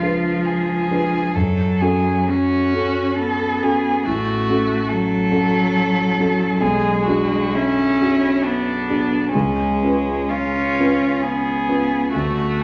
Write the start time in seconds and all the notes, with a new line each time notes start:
Already playing: C#2 F3 D4 F4 G#4 B4
0.02 D4 G#4 B4
0.45 G#4
0.91 D4 G#4 B4
1.34 F#2 F#3 A4
1.80 C#4 F#4 G#4 A4
2.29 C#4 F#4
2.74 C#4 F#4 A4
3.17 B3 A4
3.62 C#4 F#4 G#4 A4
4.05 A1 A3 F#4
4.49 C#4 F#4 A4
4.89 F#3 A4
5.31 C#4 F#4 A4
6.18 C#4 F#4 A4
6.60 B1 G#3 G#4
7.05 D4 F#4 G#4
7.54 C#4 E4
8.01 D4 F#4 G#4
8.42 B3 D4
8.90 D4 F#4 G#4
9.31 G#3 C#4
9.35 C#2
9.83 C#4 F4 B4
10.28 C#4 F4
10.80 C#4 F4 B4
11.21 B3 G#4
11.69 C#4 F4 B4
12.11 D2 A3 F#4